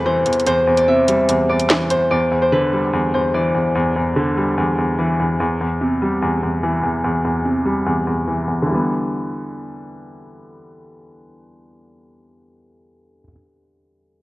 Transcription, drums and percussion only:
0.26 closed hi-hat
0.33 closed hi-hat
0.40 closed hi-hat
0.47 closed hi-hat
0.77 closed hi-hat
1.08 closed hi-hat
1.29 closed hi-hat
1.60 closed hi-hat
1.70 snare, clap, closed hi-hat
1.90 closed hi-hat

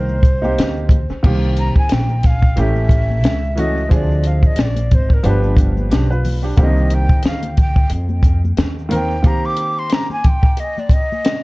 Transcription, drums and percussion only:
0.08 high conga, shaker
0.23 kick, closed hi-hat, shaker
0.44 high conga, shaker
0.58 snare, closed hi-hat, shaker
0.77 shaker
0.89 kick, closed hi-hat, high conga, low conga, shaker
1.09 shaker
1.24 kick, crash, shaker
1.42 shaker
1.57 closed hi-hat, shaker
1.76 kick, shaker
1.89 snare, closed hi-hat, shaker
2.09 high conga, shaker
2.23 kick, snare, closed hi-hat, low conga, shaker
2.43 kick, shaker
2.57 closed hi-hat, shaker
2.76 high conga, shaker
2.89 kick, closed hi-hat, shaker
3.10 high conga, shaker
3.24 snare, closed hi-hat, shaker
3.44 shaker
3.58 closed hi-hat, high conga, low conga, shaker
3.77 shaker
3.91 kick, closed hi-hat, shaker
4.11 shaker
4.24 closed hi-hat, shaker
4.43 kick, shaker
4.56 snare, closed hi-hat, shaker
4.76 closed hi-hat, high conga, shaker
4.91 kick, closed hi-hat, low conga, shaker
5.10 kick, shaker
5.23 closed hi-hat, shaker
5.43 high conga, shaker
5.56 kick, closed hi-hat, shaker
5.77 high conga, shaker
5.91 snare, closed hi-hat, shaker
6.11 shaker
6.25 open hi-hat, high conga, low conga, shaker
6.43 shaker
6.58 kick, closed hi-hat, shaker
6.77 shaker
6.90 closed hi-hat, shaker
7.09 kick, shaker
7.23 snare, closed hi-hat, shaker
7.43 closed hi-hat, high conga, shaker
7.57 kick, closed hi-hat, low conga, shaker
7.76 kick, shaker
7.90 closed hi-hat, shaker
8.09 high conga, shaker
8.23 kick, closed hi-hat, shaker
8.45 high conga, shaker
8.57 snare, closed hi-hat, shaker
8.79 shaker
8.91 closed hi-hat, high conga, low conga, shaker
9.11 shaker
9.24 kick, closed hi-hat, shaker
9.45 shaker
9.57 closed hi-hat, shaker
9.78 shaker
9.90 snare, closed hi-hat, shaker
10.10 high conga, shaker
10.24 kick, closed hi-hat, low conga, shaker
10.43 kick, shaker
10.57 closed hi-hat, shaker
10.78 high conga, shaker
10.90 kick, closed hi-hat, shaker
11.12 high conga, shaker
11.25 snare, closed hi-hat, shaker

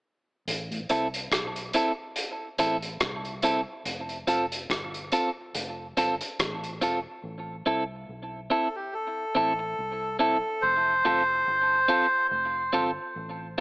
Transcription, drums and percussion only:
0.48 closed hi-hat
0.72 closed hi-hat
0.89 closed hi-hat
1.14 closed hi-hat
1.32 kick, cross-stick, closed hi-hat
1.56 closed hi-hat
1.73 closed hi-hat
2.16 closed hi-hat
2.58 closed hi-hat
2.82 closed hi-hat
3.00 kick, cross-stick, closed hi-hat
3.25 closed hi-hat
3.42 closed hi-hat
3.85 closed hi-hat
4.09 closed hi-hat
4.27 closed hi-hat
4.52 closed hi-hat
4.70 kick, cross-stick, closed hi-hat
4.94 closed hi-hat
5.12 closed hi-hat
5.55 closed hi-hat
5.97 closed hi-hat
6.21 closed hi-hat
6.39 kick, cross-stick, closed hi-hat
6.64 closed hi-hat
6.82 closed hi-hat

